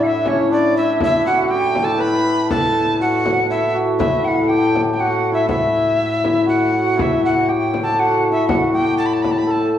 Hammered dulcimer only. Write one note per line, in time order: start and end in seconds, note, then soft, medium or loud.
0.00 0.32 D4 medium
0.00 0.78 E4 medium
0.00 1.26 F#4 medium
0.26 0.57 C#4 medium
0.51 4.24 D4 medium
0.78 1.01 E4 medium
1.02 3.50 E4 medium
1.26 1.57 F#4 medium
1.51 3.06 G4 medium
1.83 2.51 A4 medium
1.98 4.72 B4 medium
2.51 4.41 A4 medium
3.00 3.25 F#4 medium
3.25 3.73 F#4 medium
3.50 3.98 E4 medium
3.74 4.55 F#4 medium
3.99 5.32 E4 medium
4.42 7.34 A4 medium
4.49 5.05 G4 medium
4.99 6.45 F#4 medium
5.32 5.46 E4 medium
5.46 6.24 E4 medium
6.24 6.95 E4 medium
6.46 6.71 F#4 medium
6.72 7.23 F#4 medium
6.96 8.31 E4 medium
7.23 7.54 F#4 medium
7.48 8.05 G4 medium
7.83 9.47 A4 medium
7.99 8.49 F#4 medium
8.32 9.79 E4 medium
8.49 8.80 F#4 medium
8.74 9.79 G4 medium
9.47 9.79 A4 medium